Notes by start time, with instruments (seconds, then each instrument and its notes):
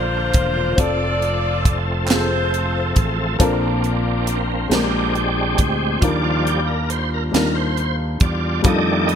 Already playing: fingered electric bass A#1, upright piano A#2 D4 F4 A#4, tonewheel organ D3 F3 A#3 F4, saxophone section F4 C5
0.34 fingered electric bass E1, kick, closed hi-hat
0.76 fingered electric bass F1, tonewheel organ A3 C4 A4, upright piano C4 F4 A4, saxophone section D5, kick, closed hi-hat
0.80 saxophone section F4 A4
1.22 closed hi-hat
1.65 kick, closed hi-hat
2.07 upright piano C4 F4, saxophone section F4 A4 C5, snare, clap, closed hi-hat
2.11 upright piano G#4
2.18 upright piano A4
2.54 closed hi-hat
2.96 fingered electric bass A1, kick, closed hi-hat
3.39 fingered electric bass A#1, upright piano A#2 C4 D4 F4 A4 A#4, tonewheel organ A#3 C4 D4, kick, closed hi-hat
3.84 closed hi-hat
4.27 tonewheel organ D4, closed hi-hat
4.52 tonewheel organ C4
4.69 fingered electric bass A#1, upright piano A#2 G#3 C4 D4 G4 A#4, tonewheel organ G#3 C4 D4 G4, snare, closed hi-hat
4.74 tonewheel organ A#3
5.15 tonewheel organ D4, closed hi-hat
5.58 fingered electric bass D2, tonewheel organ C4, kick, closed hi-hat
6.00 fingered electric bass D#2, upright piano D#3 F3 D4 D#4 F4 A#4, tonewheel organ F3 G3 D4 D5, kick, closed hi-hat
6.07 upright piano G3
6.23 tonewheel organ F4
6.46 tonewheel organ G4, closed hi-hat
6.67 tonewheel organ A#4
6.90 tonewheel organ C5, closed hi-hat
7.14 tonewheel organ A#4
7.32 fingered electric bass D#2, upright piano G3 D4 D#4 F4, tonewheel organ A#4, snare, closed hi-hat
7.36 upright piano A#4
7.55 tonewheel organ C5
7.77 closed hi-hat
8.20 fingered electric bass E2, tonewheel organ G3 F4 D5, kick, closed hi-hat
8.62 fingered electric bass F2, tonewheel organ D#3 G3 A3 D5 D#5, upright piano G3 D4 D#4 F4, kick, closed hi-hat
8.67 upright piano A4
8.85 tonewheel organ D5
9.06 tonewheel organ D#5, closed hi-hat